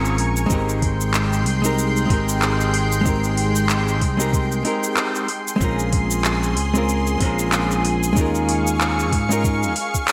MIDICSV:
0, 0, Header, 1, 5, 480
1, 0, Start_track
1, 0, Key_signature, -4, "major"
1, 0, Tempo, 638298
1, 382, Time_signature, 4, 2, 24, 8
1, 7611, End_track
2, 0, Start_track
2, 0, Title_t, "Analog synth pad"
2, 0, Program_c, 0, 89
2, 0, Note_on_c, 0, 70, 79
2, 0, Note_on_c, 0, 80, 75
2, 0, Note_on_c, 0, 85, 91
2, 348, Note_off_c, 0, 70, 0
2, 349, Note_off_c, 0, 80, 0
2, 349, Note_off_c, 0, 85, 0
2, 373, Note_on_c, 0, 56, 91
2, 377, Note_on_c, 0, 84, 102
2, 379, Note_on_c, 0, 79, 84
2, 3947, Note_off_c, 0, 56, 0
2, 3949, Note_off_c, 0, 84, 0
2, 3950, Note_off_c, 0, 79, 0
2, 3976, Note_on_c, 0, 68, 80
2, 3977, Note_on_c, 0, 84, 91
2, 6118, Note_off_c, 0, 84, 0
2, 6147, Note_on_c, 0, 77, 81
2, 6154, Note_on_c, 0, 85, 102
2, 7611, Note_off_c, 0, 68, 0
2, 7611, Note_off_c, 0, 77, 0
2, 7611, Note_off_c, 0, 85, 0
2, 7611, End_track
3, 0, Start_track
3, 0, Title_t, "Hollow-body jazz guitar"
3, 0, Program_c, 1, 26
3, 0, Note_on_c, 1, 56, 74
3, 0, Note_on_c, 1, 60, 73
3, 0, Note_on_c, 1, 61, 71
3, 0, Note_on_c, 1, 65, 70
3, 0, Note_on_c, 1, 70, 88
3, 339, Note_off_c, 1, 56, 0
3, 347, Note_on_c, 1, 56, 96
3, 348, Note_off_c, 1, 60, 0
3, 354, Note_off_c, 1, 61, 0
3, 363, Note_off_c, 1, 65, 0
3, 364, Note_on_c, 1, 60, 80
3, 369, Note_off_c, 1, 70, 0
3, 376, Note_on_c, 1, 63, 80
3, 394, Note_on_c, 1, 67, 82
3, 406, Note_on_c, 1, 70, 93
3, 1189, Note_off_c, 1, 56, 0
3, 1198, Note_off_c, 1, 60, 0
3, 1203, Note_off_c, 1, 63, 0
3, 1212, Note_off_c, 1, 67, 0
3, 1217, Note_on_c, 1, 56, 79
3, 1219, Note_off_c, 1, 70, 0
3, 1230, Note_on_c, 1, 60, 74
3, 1235, Note_on_c, 1, 63, 80
3, 1239, Note_on_c, 1, 67, 81
3, 1247, Note_on_c, 1, 70, 101
3, 1536, Note_off_c, 1, 56, 0
3, 1545, Note_on_c, 1, 56, 80
3, 1549, Note_off_c, 1, 60, 0
3, 1555, Note_off_c, 1, 63, 0
3, 1557, Note_off_c, 1, 67, 0
3, 1558, Note_on_c, 1, 60, 76
3, 1561, Note_off_c, 1, 70, 0
3, 1572, Note_on_c, 1, 63, 70
3, 1590, Note_on_c, 1, 67, 71
3, 1602, Note_on_c, 1, 70, 86
3, 2255, Note_off_c, 1, 56, 0
3, 2264, Note_on_c, 1, 56, 91
3, 2265, Note_off_c, 1, 60, 0
3, 2272, Note_off_c, 1, 63, 0
3, 2281, Note_off_c, 1, 67, 0
3, 2281, Note_on_c, 1, 60, 85
3, 2287, Note_off_c, 1, 70, 0
3, 2294, Note_on_c, 1, 63, 80
3, 2309, Note_on_c, 1, 67, 85
3, 2322, Note_on_c, 1, 70, 94
3, 3107, Note_off_c, 1, 56, 0
3, 3116, Note_off_c, 1, 60, 0
3, 3122, Note_off_c, 1, 63, 0
3, 3130, Note_off_c, 1, 67, 0
3, 3136, Note_off_c, 1, 70, 0
3, 3137, Note_on_c, 1, 56, 89
3, 3142, Note_on_c, 1, 60, 79
3, 3151, Note_on_c, 1, 63, 76
3, 3158, Note_on_c, 1, 67, 77
3, 3168, Note_on_c, 1, 70, 97
3, 3466, Note_off_c, 1, 56, 0
3, 3469, Note_off_c, 1, 60, 0
3, 3473, Note_off_c, 1, 63, 0
3, 3476, Note_off_c, 1, 67, 0
3, 3480, Note_on_c, 1, 56, 78
3, 3481, Note_off_c, 1, 70, 0
3, 3492, Note_on_c, 1, 60, 76
3, 3495, Note_on_c, 1, 63, 77
3, 3506, Note_on_c, 1, 67, 72
3, 3514, Note_on_c, 1, 70, 90
3, 3958, Note_off_c, 1, 56, 0
3, 3964, Note_off_c, 1, 60, 0
3, 3966, Note_off_c, 1, 63, 0
3, 3971, Note_off_c, 1, 67, 0
3, 3975, Note_off_c, 1, 70, 0
3, 4181, Note_on_c, 1, 56, 96
3, 4196, Note_on_c, 1, 60, 82
3, 4213, Note_on_c, 1, 61, 82
3, 4228, Note_on_c, 1, 65, 86
3, 4242, Note_on_c, 1, 70, 104
3, 5026, Note_off_c, 1, 56, 0
3, 5033, Note_off_c, 1, 60, 0
3, 5042, Note_off_c, 1, 61, 0
3, 5050, Note_off_c, 1, 65, 0
3, 5056, Note_off_c, 1, 70, 0
3, 5066, Note_on_c, 1, 56, 88
3, 5069, Note_on_c, 1, 60, 83
3, 5079, Note_on_c, 1, 61, 81
3, 5084, Note_on_c, 1, 65, 81
3, 5095, Note_on_c, 1, 70, 100
3, 5390, Note_off_c, 1, 56, 0
3, 5392, Note_off_c, 1, 60, 0
3, 5397, Note_off_c, 1, 61, 0
3, 5398, Note_on_c, 1, 56, 81
3, 5400, Note_off_c, 1, 65, 0
3, 5405, Note_off_c, 1, 70, 0
3, 5414, Note_on_c, 1, 60, 74
3, 5426, Note_on_c, 1, 61, 73
3, 5445, Note_on_c, 1, 65, 73
3, 5457, Note_on_c, 1, 70, 93
3, 6103, Note_off_c, 1, 56, 0
3, 6112, Note_on_c, 1, 56, 96
3, 6113, Note_off_c, 1, 60, 0
3, 6119, Note_off_c, 1, 61, 0
3, 6129, Note_off_c, 1, 65, 0
3, 6129, Note_on_c, 1, 61, 83
3, 6135, Note_off_c, 1, 70, 0
3, 6142, Note_on_c, 1, 63, 85
3, 6156, Note_on_c, 1, 65, 88
3, 6172, Note_on_c, 1, 70, 105
3, 6951, Note_off_c, 1, 56, 0
3, 6960, Note_off_c, 1, 61, 0
3, 6967, Note_off_c, 1, 63, 0
3, 6974, Note_off_c, 1, 65, 0
3, 6981, Note_off_c, 1, 70, 0
3, 6987, Note_on_c, 1, 56, 88
3, 6993, Note_on_c, 1, 61, 75
3, 7002, Note_on_c, 1, 63, 81
3, 7012, Note_on_c, 1, 65, 76
3, 7017, Note_on_c, 1, 70, 96
3, 7311, Note_off_c, 1, 56, 0
3, 7314, Note_off_c, 1, 61, 0
3, 7319, Note_off_c, 1, 63, 0
3, 7323, Note_off_c, 1, 65, 0
3, 7326, Note_off_c, 1, 70, 0
3, 7611, End_track
4, 0, Start_track
4, 0, Title_t, "Fingered electric bass"
4, 0, Program_c, 2, 33
4, 0, Note_on_c, 2, 32, 86
4, 141, Note_off_c, 2, 32, 0
4, 141, Note_on_c, 2, 34, 72
4, 350, Note_off_c, 2, 34, 0
4, 377, Note_on_c, 2, 32, 91
4, 1103, Note_off_c, 2, 32, 0
4, 1103, Note_on_c, 2, 36, 93
4, 1557, Note_off_c, 2, 36, 0
4, 1579, Note_on_c, 2, 32, 99
4, 3018, Note_off_c, 2, 32, 0
4, 3018, Note_on_c, 2, 36, 93
4, 3475, Note_off_c, 2, 36, 0
4, 4216, Note_on_c, 2, 34, 97
4, 4941, Note_off_c, 2, 34, 0
4, 4941, Note_on_c, 2, 37, 96
4, 5397, Note_off_c, 2, 37, 0
4, 5419, Note_on_c, 2, 34, 109
4, 6140, Note_off_c, 2, 34, 0
4, 6140, Note_on_c, 2, 39, 95
4, 6860, Note_off_c, 2, 39, 0
4, 6860, Note_on_c, 2, 44, 97
4, 7316, Note_off_c, 2, 44, 0
4, 7611, End_track
5, 0, Start_track
5, 0, Title_t, "Drums"
5, 39, Note_on_c, 9, 82, 33
5, 114, Note_off_c, 9, 82, 0
5, 137, Note_on_c, 9, 46, 76
5, 213, Note_off_c, 9, 46, 0
5, 275, Note_on_c, 9, 82, 59
5, 350, Note_off_c, 9, 82, 0
5, 377, Note_on_c, 9, 82, 55
5, 380, Note_on_c, 9, 36, 100
5, 452, Note_off_c, 9, 82, 0
5, 455, Note_off_c, 9, 36, 0
5, 519, Note_on_c, 9, 82, 32
5, 594, Note_off_c, 9, 82, 0
5, 619, Note_on_c, 9, 46, 84
5, 620, Note_on_c, 9, 36, 92
5, 694, Note_off_c, 9, 46, 0
5, 695, Note_off_c, 9, 36, 0
5, 757, Note_on_c, 9, 82, 57
5, 833, Note_off_c, 9, 82, 0
5, 857, Note_on_c, 9, 39, 84
5, 858, Note_on_c, 9, 82, 52
5, 932, Note_off_c, 9, 39, 0
5, 933, Note_off_c, 9, 82, 0
5, 999, Note_on_c, 9, 82, 30
5, 1074, Note_off_c, 9, 82, 0
5, 1099, Note_on_c, 9, 46, 79
5, 1174, Note_off_c, 9, 46, 0
5, 1236, Note_on_c, 9, 82, 64
5, 1311, Note_off_c, 9, 82, 0
5, 1342, Note_on_c, 9, 82, 51
5, 1418, Note_off_c, 9, 82, 0
5, 1479, Note_on_c, 9, 82, 31
5, 1554, Note_off_c, 9, 82, 0
5, 1579, Note_on_c, 9, 36, 106
5, 1581, Note_on_c, 9, 46, 80
5, 1654, Note_off_c, 9, 36, 0
5, 1656, Note_off_c, 9, 46, 0
5, 1721, Note_on_c, 9, 82, 60
5, 1796, Note_off_c, 9, 82, 0
5, 1821, Note_on_c, 9, 39, 87
5, 1823, Note_on_c, 9, 82, 55
5, 1897, Note_off_c, 9, 39, 0
5, 1898, Note_off_c, 9, 82, 0
5, 1959, Note_on_c, 9, 82, 32
5, 2035, Note_off_c, 9, 82, 0
5, 2058, Note_on_c, 9, 46, 78
5, 2133, Note_off_c, 9, 46, 0
5, 2197, Note_on_c, 9, 82, 60
5, 2272, Note_off_c, 9, 82, 0
5, 2299, Note_on_c, 9, 36, 104
5, 2300, Note_on_c, 9, 82, 51
5, 2374, Note_off_c, 9, 36, 0
5, 2375, Note_off_c, 9, 82, 0
5, 2436, Note_on_c, 9, 82, 31
5, 2511, Note_off_c, 9, 82, 0
5, 2538, Note_on_c, 9, 46, 86
5, 2613, Note_off_c, 9, 46, 0
5, 2675, Note_on_c, 9, 82, 59
5, 2750, Note_off_c, 9, 82, 0
5, 2778, Note_on_c, 9, 39, 88
5, 2779, Note_on_c, 9, 82, 49
5, 2853, Note_off_c, 9, 39, 0
5, 2855, Note_off_c, 9, 82, 0
5, 2918, Note_on_c, 9, 82, 29
5, 2993, Note_off_c, 9, 82, 0
5, 3017, Note_on_c, 9, 36, 98
5, 3019, Note_on_c, 9, 46, 83
5, 3093, Note_off_c, 9, 36, 0
5, 3094, Note_off_c, 9, 46, 0
5, 3158, Note_on_c, 9, 82, 64
5, 3233, Note_off_c, 9, 82, 0
5, 3257, Note_on_c, 9, 36, 91
5, 3262, Note_on_c, 9, 82, 54
5, 3332, Note_off_c, 9, 36, 0
5, 3338, Note_off_c, 9, 82, 0
5, 3398, Note_on_c, 9, 82, 31
5, 3473, Note_off_c, 9, 82, 0
5, 3495, Note_on_c, 9, 46, 80
5, 3570, Note_off_c, 9, 46, 0
5, 3637, Note_on_c, 9, 82, 58
5, 3712, Note_off_c, 9, 82, 0
5, 3736, Note_on_c, 9, 39, 92
5, 3737, Note_on_c, 9, 82, 52
5, 3811, Note_off_c, 9, 39, 0
5, 3812, Note_off_c, 9, 82, 0
5, 3875, Note_on_c, 9, 82, 30
5, 3950, Note_off_c, 9, 82, 0
5, 3974, Note_on_c, 9, 46, 78
5, 4049, Note_off_c, 9, 46, 0
5, 4119, Note_on_c, 9, 82, 61
5, 4194, Note_off_c, 9, 82, 0
5, 4218, Note_on_c, 9, 36, 100
5, 4219, Note_on_c, 9, 82, 53
5, 4293, Note_off_c, 9, 36, 0
5, 4294, Note_off_c, 9, 82, 0
5, 4356, Note_on_c, 9, 82, 32
5, 4431, Note_off_c, 9, 82, 0
5, 4456, Note_on_c, 9, 46, 89
5, 4458, Note_on_c, 9, 36, 88
5, 4531, Note_off_c, 9, 46, 0
5, 4533, Note_off_c, 9, 36, 0
5, 4592, Note_on_c, 9, 82, 63
5, 4668, Note_off_c, 9, 82, 0
5, 4697, Note_on_c, 9, 39, 85
5, 4698, Note_on_c, 9, 82, 48
5, 4772, Note_off_c, 9, 39, 0
5, 4773, Note_off_c, 9, 82, 0
5, 4837, Note_on_c, 9, 82, 28
5, 4912, Note_off_c, 9, 82, 0
5, 4939, Note_on_c, 9, 46, 94
5, 5014, Note_off_c, 9, 46, 0
5, 5077, Note_on_c, 9, 82, 64
5, 5152, Note_off_c, 9, 82, 0
5, 5182, Note_on_c, 9, 82, 52
5, 5257, Note_off_c, 9, 82, 0
5, 5316, Note_on_c, 9, 82, 32
5, 5391, Note_off_c, 9, 82, 0
5, 5418, Note_on_c, 9, 46, 88
5, 5420, Note_on_c, 9, 36, 96
5, 5493, Note_off_c, 9, 46, 0
5, 5495, Note_off_c, 9, 36, 0
5, 5557, Note_on_c, 9, 82, 61
5, 5632, Note_off_c, 9, 82, 0
5, 5658, Note_on_c, 9, 39, 96
5, 5659, Note_on_c, 9, 82, 55
5, 5733, Note_off_c, 9, 39, 0
5, 5734, Note_off_c, 9, 82, 0
5, 5799, Note_on_c, 9, 82, 31
5, 5875, Note_off_c, 9, 82, 0
5, 5900, Note_on_c, 9, 46, 84
5, 5976, Note_off_c, 9, 46, 0
5, 6040, Note_on_c, 9, 82, 59
5, 6116, Note_off_c, 9, 82, 0
5, 6141, Note_on_c, 9, 36, 105
5, 6141, Note_on_c, 9, 82, 56
5, 6216, Note_off_c, 9, 36, 0
5, 6216, Note_off_c, 9, 82, 0
5, 6278, Note_on_c, 9, 82, 29
5, 6353, Note_off_c, 9, 82, 0
5, 6382, Note_on_c, 9, 46, 98
5, 6457, Note_off_c, 9, 46, 0
5, 6520, Note_on_c, 9, 82, 61
5, 6596, Note_off_c, 9, 82, 0
5, 6624, Note_on_c, 9, 39, 94
5, 6625, Note_on_c, 9, 82, 51
5, 6699, Note_off_c, 9, 39, 0
5, 6700, Note_off_c, 9, 82, 0
5, 6763, Note_on_c, 9, 82, 29
5, 6839, Note_off_c, 9, 82, 0
5, 6861, Note_on_c, 9, 36, 105
5, 6862, Note_on_c, 9, 46, 98
5, 6936, Note_off_c, 9, 36, 0
5, 6937, Note_off_c, 9, 46, 0
5, 7003, Note_on_c, 9, 82, 68
5, 7078, Note_off_c, 9, 82, 0
5, 7102, Note_on_c, 9, 36, 101
5, 7104, Note_on_c, 9, 82, 52
5, 7177, Note_off_c, 9, 36, 0
5, 7179, Note_off_c, 9, 82, 0
5, 7241, Note_on_c, 9, 82, 33
5, 7317, Note_off_c, 9, 82, 0
5, 7338, Note_on_c, 9, 46, 91
5, 7413, Note_off_c, 9, 46, 0
5, 7478, Note_on_c, 9, 36, 59
5, 7480, Note_on_c, 9, 82, 60
5, 7554, Note_off_c, 9, 36, 0
5, 7555, Note_off_c, 9, 82, 0
5, 7580, Note_on_c, 9, 39, 97
5, 7581, Note_on_c, 9, 82, 53
5, 7611, Note_off_c, 9, 39, 0
5, 7611, Note_off_c, 9, 82, 0
5, 7611, End_track
0, 0, End_of_file